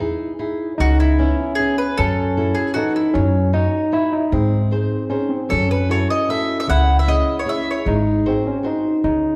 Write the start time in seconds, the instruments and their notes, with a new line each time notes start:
Already playing: upright bass E2
0.00 nylon-string guitar D#4 E4 G#4
0.39 nylon-string guitar D#4 E4 G#4
0.78 upright bass C#2, nylon-string guitar C#3, tine electric piano D#4, mandolin F#4
1.00 mandolin E4
1.18 nylon-string guitar B3 C#4 E4, tine electric piano C#4
1.55 nylon-string guitar C#4, mandolin G#4
1.59 nylon-string guitar B3 E4
1.78 mandolin B4
1.98 upright bass F#2, nylon-string guitar F#3, tine electric piano C#4, mandolin A4
2.37 nylon-string guitar E4 F#4 A4
2.55 mandolin G#4
2.74 nylon-string guitar E3 F#4 A4, tine electric piano D#4, mandolin F#4
2.96 mandolin E4
3.14 upright bass F#2, nylon-string guitar F#3, tine electric piano C#4
3.53 nylon-string guitar D#4 F#4 C#5, tine electric piano D#4
3.92 nylon-string guitar D#4 F#4 C#5, tine electric piano E4
4.13 tine electric piano D#4
4.32 upright bass G#2, nylon-string guitar G#3, tine electric piano C4
4.71 nylon-string guitar D#4 G#4 C5
5.10 tine electric piano C#4, nylon-string guitar D#4 G#4 C5
5.29 tine electric piano C4
5.49 upright bass F#2, nylon-string guitar F#3, tine electric piano C#4, mandolin A4
5.71 mandolin B4
5.89 nylon-string guitar E4 F#4 A4, mandolin C#5
6.10 mandolin D#5
6.29 nylon-string guitar E4 F#4 A4, mandolin E5
6.60 mandolin E5
6.67 upright bass C#2, nylon-string guitar C#3, tine electric piano E4, mandolin F#5
6.99 mandolin E5
7.07 nylon-string guitar C#4 E4 G#4, mandolin D#5
7.39 mandolin C#5
7.45 nylon-string guitar C#4 E4 G#4, mandolin E5
7.71 mandolin C#5
7.85 upright bass G#1, nylon-string guitar G#3, tine electric piano D#4
8.26 tine electric piano C4, nylon-string guitar F#4 G#4 C5
8.47 tine electric piano C#4
8.63 tine electric piano D#4, nylon-string guitar F#4 G#4 C5
9.04 upright bass C#2, nylon-string guitar C#3, tine electric piano D#4